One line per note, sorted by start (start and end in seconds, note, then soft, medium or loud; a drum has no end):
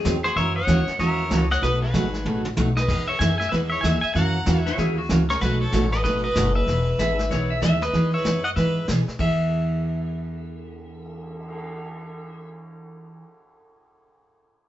0.00 0.14 G#4 medium
0.05 0.35 E2 medium
0.05 0.16 D#3 medium
0.05 0.16 F#3 medium
0.05 0.16 C4 medium
0.05 0.16 D#4 medium
0.05 0.17 G#4 medium
0.05 snare medium
0.05 hi-hat pedal medium
0.24 0.36 F#4 medium
0.24 0.36 G#4 medium
0.24 0.36 C5 medium
0.24 snare soft
0.36 0.67 F#2 medium
0.36 0.57 C#3 medium
0.36 0.57 E3 medium
0.36 0.57 A#3 medium
0.36 0.57 C#4 medium
0.36 0.58 F#4 medium
0.36 0.55 A#4 medium
0.36 0.55 C#5 medium
0.36 0.55 E5 loud
0.36 brush sweep medium
0.36 snare soft
0.56 0.96 C#5 loud
0.56 0.96 D#5 medium
0.56 1.00 F#5 loud
0.67 0.86 D#2 medium
0.67 0.79 C#3 medium
0.67 0.79 E3 medium
0.67 0.79 A#3 medium
0.67 0.79 C#4 medium
0.67 0.79 F#4 medium
0.67 snare medium
0.67 hi-hat pedal medium
0.87 muted upright bass stroke soft
0.87 snare soft
0.99 1.30 E2 medium
0.99 1.20 C#3 medium
0.99 1.20 E3 medium
0.99 1.20 A#3 medium
0.99 1.20 C#4 medium
0.99 1.21 F#4 medium
0.99 1.35 A#4 medium
0.99 1.47 C#5 medium
0.99 1.39 E5 medium
0.99 brush sweep medium
0.99 snare soft
1.30 1.61 C#2 medium
1.30 1.41 C#3 medium
1.30 1.42 E3 medium
1.30 1.42 A#3 medium
1.30 1.42 C#4 medium
1.30 1.42 F#4 medium
1.30 snare medium
1.30 hi-hat pedal medium
1.35 1.47 A4 medium
1.35 1.51 D#5 medium
1.51 1.64 C#5 medium
1.51 1.61 D#5 medium
1.51 1.63 F#5 medium
1.51 snare soft
1.61 1.93 B1 medium
1.61 1.82 B2 medium
1.61 1.83 F#3 medium
1.61 1.83 A3 medium
1.61 1.83 D#4 medium
1.61 1.83 F#4 medium
1.61 1.82 B4 medium
1.61 1.81 B4 medium
1.61 1.83 D#5 loud
1.61 brush sweep soft
1.61 snare soft
1.82 2.41 F#4 medium
1.82 2.41 G#4 medium
1.82 2.41 B4 medium
1.93 2.24 G#1 loud
1.93 2.05 B2 medium
1.93 2.05 F#3 medium
1.93 2.05 A3 medium
1.93 2.05 D#4 medium
1.93 2.05 F#4 medium
1.93 snare medium
1.93 hi-hat pedal medium
2.14 snare soft
2.25 2.56 A1 medium
2.25 2.46 B2 medium
2.25 2.46 F#3 medium
2.25 2.46 A3 medium
2.25 2.46 D#4 medium
2.25 2.46 F#4 medium
2.25 high tom soft
2.45 high tom medium
2.56 2.88 B1 medium
2.56 2.68 B2 medium
2.56 2.68 F#3 medium
2.56 2.68 A3 medium
2.56 2.68 D#4 medium
2.56 2.69 F#4 medium
2.56 hi-hat pedal medium
2.56 high tom medium
2.77 3.06 B4 medium
2.77 3.07 B4 medium
2.77 3.06 D#5 medium
2.77 snare medium
2.88 3.19 E2 medium
2.88 3.09 E3 medium
2.88 3.09 B3 medium
2.88 3.10 D#4 medium
2.88 3.10 G#4 medium
2.88 brush sweep medium
2.88 kick medium
2.88 snare soft
2.88 crash medium
3.08 3.19 C#5 medium
3.08 3.20 C#5 medium
3.08 3.20 E5 medium
3.19 3.51 F#2 medium
3.19 3.31 E3 medium
3.19 3.31 B3 medium
3.19 3.32 D#4 medium
3.19 3.32 G#4 medium
3.19 3.38 E5 medium
3.19 3.39 E5 medium
3.19 3.37 G#5 loud
3.19 snare medium
3.19 hi-hat pedal medium
3.38 3.51 E5 medium
3.38 3.48 E5 medium
3.38 3.51 G#5 medium
3.38 snare soft
3.49 3.82 E2 medium
3.49 3.72 E3 medium
3.49 3.72 B3 medium
3.49 3.73 D#4 medium
3.49 3.73 G#4 medium
3.49 3.60 B4 medium
3.49 3.57 B4 medium
3.49 3.55 E5 medium
3.49 brush sweep medium
3.49 snare soft
3.70 3.82 C#5 medium
3.70 3.83 C#5 medium
3.70 3.81 E5 medium
3.81 4.02 D#2 loud
3.81 3.94 E3 medium
3.81 3.94 B3 medium
3.81 3.95 D#4 medium
3.81 3.95 G#4 medium
3.81 4.01 E5 medium
3.81 4.02 E5 medium
3.81 4.00 G#5 medium
3.81 snare medium
3.81 hi-hat pedal medium
4.01 4.13 E5 medium
4.01 4.14 E5 medium
4.01 4.13 G#5 loud
4.01 muted upright bass stroke soft
4.14 4.45 F#2 medium
4.14 4.35 C#3 medium
4.14 4.35 E3 medium
4.14 4.36 A#3 medium
4.14 4.36 C#4 medium
4.14 4.36 F#4 medium
4.14 4.59 F#5 medium
4.14 4.74 F#5 medium
4.14 4.60 A#5 loud
4.14 brush sweep medium
4.14 snare soft
4.46 4.77 E2 medium
4.46 4.57 C#3 medium
4.46 4.58 E3 medium
4.46 4.58 A#3 medium
4.46 4.58 C#4 medium
4.46 4.58 F#4 medium
4.46 snare medium
4.46 hi-hat pedal medium
4.59 4.73 E5 medium
4.59 4.73 G#5 loud
4.66 4.77 E4 medium
4.66 4.78 C#5 medium
4.66 snare soft
4.77 5.08 D#2 medium
4.77 4.98 C#3 medium
4.77 4.98 E3 medium
4.77 4.98 A#3 medium
4.77 4.98 C#4 medium
4.77 4.96 E4 medium
4.77 4.99 F#4 medium
4.77 4.97 G#4 medium
4.77 brush sweep soft
4.77 snare soft
4.98 5.19 F#4 medium
5.09 5.40 C#2 loud
5.09 5.21 C#3 medium
5.09 5.21 E3 medium
5.09 5.21 A#3 medium
5.09 5.21 C#4 medium
5.09 5.21 F#4 medium
5.09 snare medium
5.09 hi-hat pedal medium
5.29 5.41 G#4 medium
5.29 5.41 A#4 medium
5.29 5.41 C#5 medium
5.29 snare soft
5.41 5.72 B1 medium
5.41 5.62 B2 medium
5.41 5.62 F#3 soft
5.41 5.62 A3 medium
5.41 5.62 D#4 medium
5.41 5.60 F#4 medium
5.41 5.63 F#4 medium
5.41 5.61 B4 medium
5.41 brush sweep soft
5.41 snare soft
5.61 5.90 A4 medium
5.61 5.91 A4 medium
5.61 5.92 C#5 medium
5.72 6.03 A1 medium
5.72 5.84 B2 medium
5.72 5.84 F#3 medium
5.72 5.84 A3 medium
5.72 5.84 D#4 medium
5.72 5.84 F#4 medium
5.72 snare medium
5.72 hi-hat pedal soft
5.92 6.03 B4 medium
5.92 6.02 D#5 medium
5.92 snare soft
6.04 6.35 G#1 medium
6.04 6.25 B2 medium
6.04 6.25 F#3 medium
6.04 6.25 A3 medium
6.04 6.25 D#4 medium
6.04 6.25 F#4 medium
6.04 6.22 B4 medium
6.04 6.23 B4 medium
6.04 6.22 D#5 loud
6.04 brush sweep soft
6.04 snare soft
6.24 6.53 B4 medium
6.24 6.55 D#5 loud
6.35 6.66 F#1 loud
6.35 6.47 B2 medium
6.35 6.47 F#3 medium
6.35 6.47 A3 medium
6.35 6.47 D#4 medium
6.35 6.47 F#4 medium
6.35 snare medium
6.35 hi-hat pedal medium
6.55 7.58 B4 medium
6.55 7.58 E5 loud
6.67 6.98 E1 medium
6.67 6.88 E3 medium
6.67 6.88 B3 medium
6.67 6.89 D#4 medium
6.67 6.89 G#4 medium
6.67 brush sweep medium
6.67 snare soft
6.99 7.29 G#1 medium
6.99 7.10 E3 medium
6.99 7.10 B3 medium
6.99 7.11 D#4 medium
6.99 7.11 G#4 medium
6.99 7.30 E5 medium
6.99 snare medium
6.99 hi-hat pedal medium
7.19 snare soft
7.30 7.61 B1 medium
7.30 7.51 E3 medium
7.30 7.52 B3 medium
7.30 7.52 D#4 medium
7.30 7.52 G#4 medium
7.30 7.50 C#5 medium
7.30 brush sweep soft
7.30 snare soft
7.50 7.61 E5 medium
7.61 7.92 D#2 medium
7.61 7.73 E3 medium
7.61 7.73 B3 medium
7.61 7.73 D#4 medium
7.61 7.74 G#4 medium
7.61 7.82 E5 loud
7.61 snare medium
7.61 hi-hat pedal medium
7.81 8.11 B4 medium
7.81 8.14 D#5 medium
7.81 snare soft
7.93 8.24 E2 medium
7.93 8.14 E3 medium
7.93 8.14 B3 medium
7.93 8.15 D#4 medium
7.93 8.15 G#4 medium
7.93 brush sweep medium
7.93 snare soft
8.13 8.43 B4 medium
8.13 8.43 C#5 medium
8.13 8.43 E5 loud
8.25 8.56 F#2 medium
8.25 8.36 E3 medium
8.25 8.36 B3 medium
8.25 8.37 D#4 medium
8.25 8.37 G#4 medium
8.25 snare medium
8.25 hi-hat pedal soft
8.44 8.50 D#5 medium
8.44 8.49 F#5 loud
8.56 8.87 G#2 medium
8.56 8.77 E3 medium
8.56 8.78 B3 medium
8.56 8.78 D#4 medium
8.56 8.78 G#4 medium
8.56 8.86 B4 medium
8.56 8.86 E5 medium
8.56 brush sweep soft
8.56 snare soft
8.88 9.07 B2 medium
8.88 9.00 E3 medium
8.88 9.00 B3 medium
8.88 9.00 D#4 medium
8.88 9.00 G#4 medium
8.88 snare medium
8.88 hi-hat pedal medium
9.08 muted upright bass stroke soft
9.08 snare soft
9.19 13.18 E2 loud
9.19 13.22 E3 medium
9.19 13.23 B3 medium
9.19 13.23 G#4 medium
9.19 12.49 E5 medium
9.19 kick medium
9.19 crash medium
9.39 cymbal swell soft